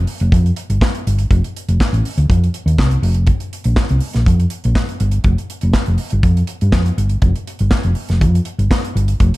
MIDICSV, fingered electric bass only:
0, 0, Header, 1, 2, 480
1, 0, Start_track
1, 0, Tempo, 493016
1, 1272, Time_signature, 4, 2, 24, 8
1, 9125, End_track
2, 0, Start_track
2, 0, Title_t, "Fingered electric bass"
2, 0, Program_c, 0, 33
2, 205, Note_on_c, 0, 29, 83
2, 283, Note_off_c, 0, 29, 0
2, 316, Note_on_c, 0, 41, 107
2, 485, Note_off_c, 0, 41, 0
2, 678, Note_on_c, 0, 31, 84
2, 758, Note_off_c, 0, 31, 0
2, 1041, Note_on_c, 0, 31, 74
2, 1208, Note_off_c, 0, 31, 0
2, 1273, Note_on_c, 0, 29, 98
2, 1363, Note_off_c, 0, 29, 0
2, 1640, Note_on_c, 0, 29, 76
2, 1720, Note_off_c, 0, 29, 0
2, 1876, Note_on_c, 0, 33, 76
2, 1957, Note_off_c, 0, 33, 0
2, 2118, Note_on_c, 0, 38, 83
2, 2198, Note_off_c, 0, 38, 0
2, 2234, Note_on_c, 0, 41, 99
2, 2404, Note_off_c, 0, 41, 0
2, 2588, Note_on_c, 0, 39, 88
2, 2672, Note_off_c, 0, 39, 0
2, 2709, Note_on_c, 0, 36, 77
2, 2880, Note_off_c, 0, 36, 0
2, 2944, Note_on_c, 0, 29, 100
2, 3208, Note_off_c, 0, 29, 0
2, 3557, Note_on_c, 0, 34, 79
2, 3638, Note_off_c, 0, 34, 0
2, 3802, Note_on_c, 0, 36, 82
2, 3882, Note_off_c, 0, 36, 0
2, 4044, Note_on_c, 0, 34, 76
2, 4123, Note_off_c, 0, 34, 0
2, 4155, Note_on_c, 0, 41, 93
2, 4325, Note_off_c, 0, 41, 0
2, 4527, Note_on_c, 0, 34, 94
2, 4605, Note_off_c, 0, 34, 0
2, 4872, Note_on_c, 0, 31, 86
2, 5043, Note_off_c, 0, 31, 0
2, 5105, Note_on_c, 0, 29, 101
2, 5198, Note_off_c, 0, 29, 0
2, 5482, Note_on_c, 0, 29, 91
2, 5562, Note_off_c, 0, 29, 0
2, 5723, Note_on_c, 0, 29, 80
2, 5803, Note_off_c, 0, 29, 0
2, 5963, Note_on_c, 0, 31, 86
2, 6043, Note_off_c, 0, 31, 0
2, 6069, Note_on_c, 0, 41, 103
2, 6241, Note_off_c, 0, 41, 0
2, 6444, Note_on_c, 0, 43, 78
2, 6544, Note_off_c, 0, 43, 0
2, 6544, Note_on_c, 0, 41, 79
2, 6718, Note_off_c, 0, 41, 0
2, 6792, Note_on_c, 0, 31, 89
2, 6963, Note_off_c, 0, 31, 0
2, 7030, Note_on_c, 0, 29, 100
2, 7122, Note_off_c, 0, 29, 0
2, 7403, Note_on_c, 0, 31, 86
2, 7483, Note_off_c, 0, 31, 0
2, 7638, Note_on_c, 0, 29, 83
2, 7719, Note_off_c, 0, 29, 0
2, 7882, Note_on_c, 0, 29, 78
2, 7997, Note_on_c, 0, 41, 93
2, 8012, Note_off_c, 0, 29, 0
2, 8167, Note_off_c, 0, 41, 0
2, 8358, Note_on_c, 0, 31, 86
2, 8439, Note_off_c, 0, 31, 0
2, 8718, Note_on_c, 0, 31, 87
2, 8887, Note_off_c, 0, 31, 0
2, 8962, Note_on_c, 0, 29, 114
2, 9050, Note_off_c, 0, 29, 0
2, 9125, End_track
0, 0, End_of_file